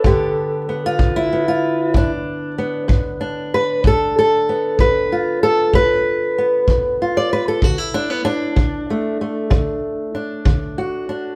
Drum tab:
BD |o--o--o--o--|o--o--o--o--|o--o--o--o--|